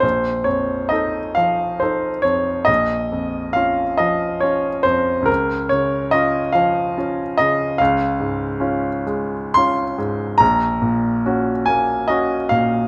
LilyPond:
<<
  \new Staff \with { instrumentName = "Grand piano" } { \time 3/4 \key des \major \tempo 4 = 70 c''8 des''8 ees''8 f''8 c''8 des''8 | ees''4 f''8 ees''8 des''8 c''8 | bes'8 des''8 ees''8 f''8 r8 ees''8 | f''2 c'''4 |
bes''4. aes''8 ees''8 f''8 | }
  \new Staff \with { instrumentName = "Grand piano" } { \time 3/4 \key des \major bes,,8 f,8 <ees' a'>8 f8 <ees' a'>8 f,8 | bes,,8 f,8 <des' f'>8 f8 <des' f'>8 f,8 | des,8 des8 <des' f'>8 f8 <des' f'>8 des8 | des,8 aes,8 <des' f'>8 aes8 <des' f'>8 aes,8 |
bes,,8 bes,8 <des' ges'>8 bes8 <des' ges'>8 bes,8 | }
>>